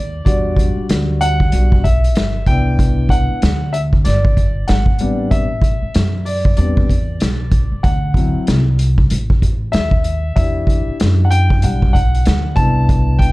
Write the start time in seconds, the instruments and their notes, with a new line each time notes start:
Already playing: upright bass D#2, grand piano D5
0.25 upright bass E2, grand piano G3 D4 F#4 D5, kick, closed hi-hat
0.56 kick, closed hi-hat
0.77 muted upright bass stroke
0.89 upright bass D2, snare, closed hi-hat
1.21 grand piano F#5, closed hi-hat
1.40 kick
1.52 upright bass B1, grand piano G3 D4 F#4, closed hi-hat
1.72 kick
1.84 grand piano E5, kick, closed hi-hat
2.04 closed hi-hat
2.15 upright bass G1, snare, closed hi-hat
2.46 upright bass C2, grand piano B3 D4 E4 G5, kick, closed hi-hat
2.79 kick, closed hi-hat
3.09 grand piano F#5, kick, closed hi-hat
3.30 muted upright bass stroke
3.42 upright bass D2, snare, closed hi-hat
3.73 grand piano E5, closed hi-hat
3.93 kick
4.04 upright bass G1, grand piano D5, snare, closed hi-hat
4.25 kick
4.37 kick, closed hi-hat
4.68 upright bass G#1, grand piano F#5, snare, closed hi-hat
4.86 kick
4.99 upright bass A1, grand piano G3 B3 C4 D4, closed hi-hat
5.31 grand piano E5, kick, closed hi-hat
5.62 kick, closed hi-hat
5.82 muted upright bass stroke
5.94 upright bass F#2, snare, closed hi-hat
6.25 grand piano D5, open hi-hat
6.45 kick
6.57 upright bass E2, grand piano G3 B3 C4 D4 D5, closed hi-hat
6.77 kick
6.90 kick, closed hi-hat
7.20 upright bass B1, snare, closed hi-hat
7.52 kick, closed hi-hat
7.72 muted upright bass stroke
7.83 upright bass D2, grand piano F#5, kick, closed hi-hat
8.14 grand piano F#3 C4 E4, kick, closed hi-hat
8.36 muted upright bass stroke
8.47 upright bass C2, snare, closed hi-hat
8.79 closed hi-hat
8.98 kick
9.10 upright bass A1, closed hi-hat
9.30 kick
9.42 kick, closed hi-hat
9.72 upright bass D#2, grand piano E5, snare, closed hi-hat
9.91 kick
10.04 closed hi-hat
10.36 upright bass E2, grand piano D4 E4 G4 E5, kick, closed hi-hat
10.67 kick, closed hi-hat
10.88 muted upright bass stroke
11.00 upright bass F#2, snare, closed hi-hat
11.25 grand piano F#5
11.31 grand piano G5, closed hi-hat
11.50 kick
11.62 upright bass B1, grand piano G3 D4 F#5, closed hi-hat
11.82 kick
11.93 grand piano F#5, kick, closed hi-hat
12.15 closed hi-hat
12.25 upright bass D2, snare, closed hi-hat
12.56 upright bass C2, grand piano B3 D4 E4 A5, kick, closed hi-hat
12.89 kick, closed hi-hat
13.19 grand piano G5, kick, closed hi-hat